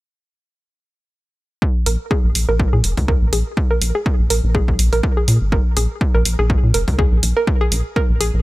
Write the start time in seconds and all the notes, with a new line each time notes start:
1.62 kick
1.86 A#1 A#4, open hi-hat
2.11 G#4, kick
2.24 A#1
2.35 A#1, open hi-hat
2.49 A#1 A#4
2.60 kick
2.73 A#2 G#4
2.84 F1, open hi-hat
2.97 C#2, kick, open hi-hat
3.08 A#4, kick
3.22 A#1
3.33 A#1 G#4, open hi-hat
3.57 kick
3.71 A#4
3.82 A#1, open hi-hat
3.95 G#4
4.06 kick
4.19 A#1
4.30 A#1 A#4, open hi-hat
4.44 A#1
4.55 G#4, kick
4.68 A#1, kick
4.79 A#1, open hi-hat
4.93 A#1 A#4, open hi-hat
5.03 kick
5.17 G#4
5.28 A#2, open hi-hat
5.41 G#1
5.52 A#4, kick
5.77 A#1 G#4, open hi-hat
6.01 kick
6.15 A#1 A#4
6.25 A#1, open hi-hat
6.39 A#1 G#4
6.50 kick
6.63 A#2
6.74 F1 A#4, open hi-hat
6.88 C#2, kick, open hi-hat
6.99 G#4, kick
7.12 A#1
7.23 A#1, open hi-hat
7.37 A#4
7.47 kick
7.61 G#4
7.72 A#1, open hi-hat
7.96 A#4, kick
8.10 A#1
8.21 A#1 G#4, open hi-hat
8.34 A#1